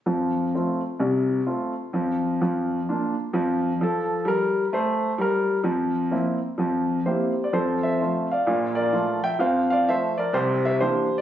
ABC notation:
X:1
M:4/4
L:1/16
Q:"Swing" 1/4=128
K:F
V:1 name="Grand piano"
z16 | z16 | z16 | z12 [Gc]3 d |
[Ac]2 [ce]4 [df]4 [Bd]4 [eg]2 | [cf]2 [df]2 [ce]2 [Bd]2 [Gc]2 [ce]2 [Gc]3 d |]
V:2 name="Grand piano"
[F,,F,]4 [A,CF]4 [C,,C,]4 [A,CF]4 | [F,,F,]4 [F,,F,]4 [B,DF]4 [F,,F,]4 | [F,A]4 [G,B]4 [A,c]4 [G,B]4 | [F,,F,]4 [B,CE]4 [F,,F,]4 [B,CE]4 |
[F,,F,]4 [A,CF]4 [B,,,B,,]4 [F,A,F]4 | [F,,F,]4 [F,A,F]4 [C,,C,]4 [E,B,D]4 |]